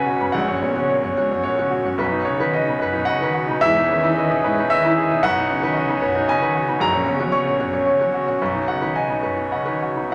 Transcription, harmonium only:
Already playing: C#4 F#4 B4
0.35 C#5
2.00 C#4 B4
3.61 G#4
5.24 F#4 C#5
6.82 C#4
8.42 C#5
10.11 B3 G#4

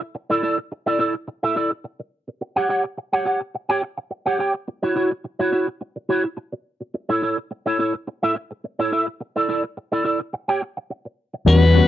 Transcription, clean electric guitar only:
0.01 muted clean electric guitar stroke
0.15 muted clean electric guitar stroke
0.30 E4 A4 D5
0.43 E4 A4 D5
0.58 muted clean electric guitar stroke
0.72 muted clean electric guitar stroke
0.86 E4 A4 D5
0.99 E4 A4 D5
1.14 muted clean electric guitar stroke
1.28 muted clean electric guitar stroke
1.43 E4 A4 E5
1.56 E4 A4 D5
1.71 muted clean electric guitar stroke
1.84 muted clean electric guitar stroke
2.00 muted clean electric guitar stroke
2.28 muted clean electric guitar stroke
2.41 muted clean electric guitar stroke
2.56 G4 C#5 F#5
2.69 G4 C#5 F#5
2.84 muted clean electric guitar stroke
2.98 muted clean electric guitar stroke
3.13 G4 C#5 F#5
3.25 G4 C#5 F#5
3.41 muted clean electric guitar stroke
3.55 muted clean electric guitar stroke
3.69 G4 C#5 G5
3.83 muted clean electric guitar stroke
3.98 muted clean electric guitar stroke
4.11 muted clean electric guitar stroke
4.26 G4 C#5 F#5
4.39 G4 C#5 G5
4.54 muted clean electric guitar stroke
4.68 muted clean electric guitar stroke
4.83 E4 F#4 C#5
4.96 E4 F#4 C#5
5.11 muted clean electric guitar stroke
5.24 muted clean electric guitar stroke
5.39 E4 F#4 C#5
5.52 E4 F#4 C#5
5.67 muted clean electric guitar stroke
5.81 muted clean electric guitar stroke
5.96 muted clean electric guitar stroke
6.09 E4 F#4 C#5
6.24 muted clean electric guitar stroke
6.37 muted clean electric guitar stroke
6.52 muted clean electric guitar stroke
6.81 muted clean electric guitar stroke
6.94 muted clean electric guitar stroke
7.09 E4 A4 C#5
7.22 E4 A4 C#5
7.37 muted clean electric guitar stroke
7.51 muted clean electric guitar stroke
7.66 E4 A4 C#5
7.79 E4 A4 C#5
7.94 muted clean electric guitar stroke
8.07 muted clean electric guitar stroke
8.23 E4 A4 E5
8.36 muted clean electric guitar stroke
8.51 muted clean electric guitar stroke
8.64 muted clean electric guitar stroke
8.79 E4 A4 C#5
8.92 E4 A4 E5
9.07 muted clean electric guitar stroke
9.20 muted clean electric guitar stroke
9.36 E4 A4 D5
9.49 E4 A4 D5
9.64 muted clean electric guitar stroke
9.77 muted clean electric guitar stroke
9.92 E4 A4 D5
10.05 E4 A4 D5
10.20 muted clean electric guitar stroke
10.33 muted clean electric guitar stroke
10.48 G4 C#5 G5
10.62 muted clean electric guitar stroke
10.77 muted clean electric guitar stroke
10.90 muted clean electric guitar stroke
11.05 muted clean electric guitar stroke
11.34 muted clean electric guitar stroke

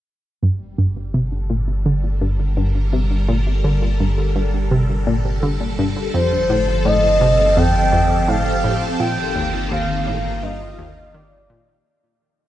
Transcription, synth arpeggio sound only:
0.43 G2
0.78 G2
1.14 C3
1.50 A#2
1.86 D3
2.21 G2
2.57 G2
2.93 C3
3.28 A#2
3.64 D3
4.00 G2
4.36 G2
4.71 C3
5.07 A#2
5.43 D3
5.79 G2
6.14 F2
6.50 A2
6.85 A2
7.21 C3
7.57 F2
7.92 F2
8.28 A2
8.64 A2
9.00 A#2
9.36 D#2
9.71 D#2
10.07 A2
10.43 G2
10.79 D#2
11.14 D#3
11.50 A#2

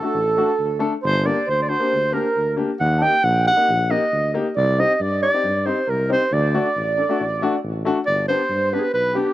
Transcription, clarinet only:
Already playing: A4
1.06 C5
1.26 D5
1.50 C5
1.62 D5
1.69 C5
2.14 A#4
2.80 F#5
3.03 G5
3.24 F#5
3.47 F#5
3.91 D#5
4.57 D5
4.79 D#5
4.94 D#5
5.01 D5
5.23 D5
5.66 C5
5.90 A#4
6.12 C5
6.33 D5
8.06 D5
8.28 C5
8.73 B4
8.79 G#4 B4
8.94 B4
9.15 G4

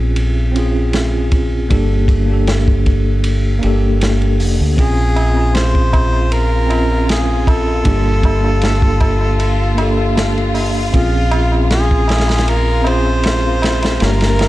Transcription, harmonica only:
4.79 G#4
5.55 C5
6.33 A#4
7.10 G#4
7.49 A4
10.94 F4
11.72 G#4
12.49 A#4
12.88 C5
14.04 C#4 F4 A#4

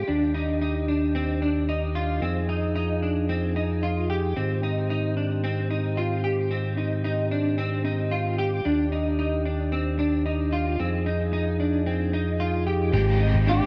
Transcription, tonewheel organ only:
0.08 D#2 D#3 D4 G4
2.22 F2 F3 D#4 G#4
4.37 G#2 D#3 C4 G4
8.65 D#2 D#3 D4
10.80 F2 F3 D#4 G#4
12.94 G#3 C4 G4

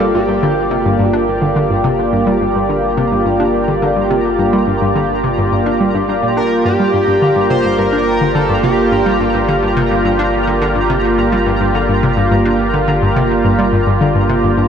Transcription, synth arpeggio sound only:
0.00 G3
0.14 G2
0.29 G2
0.43 D3
0.71 C3
0.85 G2
0.99 G2
1.13 D4
1.42 D3
1.56 D3
1.70 G2
1.84 C3
2.13 G2
2.27 G3
2.41 G2
2.55 G2
2.69 D3
2.97 C3
3.12 G2
3.26 G2
3.40 D4
3.68 D3
3.82 D3
3.96 G2
4.10 C3
4.39 G2
4.53 G3
4.67 G2
4.81 G2
4.96 D3
5.24 C3
5.38 G2
5.52 G2
5.66 D4
5.80 G3
5.94 G2
6.09 G2
6.23 A#2
6.37 D4
6.65 G2
6.79 G3
6.94 G2
7.08 G2
7.22 D3
7.36 G2
7.50 C3
7.64 G2
7.78 G2
7.93 D4
8.21 D3
8.35 D3
8.49 G2
8.63 C3
8.92 G2
9.06 G3
9.20 G2
9.34 G2
9.48 D3
9.62 G2
9.77 C3
9.91 G2
10.05 G2
10.19 D4
10.47 D3
10.61 D3
10.76 G2
10.90 C3
11.18 G2
11.32 G3
11.46 G2
11.61 G2
11.75 D3
11.89 G2
12.03 C3
12.17 G2
12.31 G2
12.45 D4
12.74 D3
12.88 D3
13.02 G2
13.16 C3
13.44 G2
13.59 G3
13.73 G2
13.87 G2
14.01 D3
14.15 G2
14.29 C3
14.43 G2
14.58 G2

